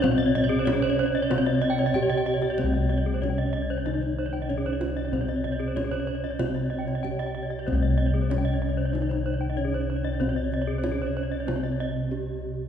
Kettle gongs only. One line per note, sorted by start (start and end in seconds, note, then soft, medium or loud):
0.00 1.30 C2 medium
0.00 1.90 C4 medium
0.68 0.76 C#4 soft
1.32 3.18 C3 medium
1.96 2.04 C#4 soft
2.59 4.45 C4 medium
2.64 6.38 C2 medium
3.22 3.30 C#4 soft
4.50 4.58 C#4 medium
5.12 6.99 C4 medium
5.77 5.85 C#4 soft
6.40 8.26 C3 medium
7.04 7.12 C#4 soft
7.68 9.54 C4 medium
7.73 11.47 C2 loud
8.31 8.39 C#4 soft
9.58 9.66 C#4 soft
10.21 12.08 C4 medium
10.84 10.92 C#4 soft
11.49 12.69 C3 medium
12.12 12.20 C#4 soft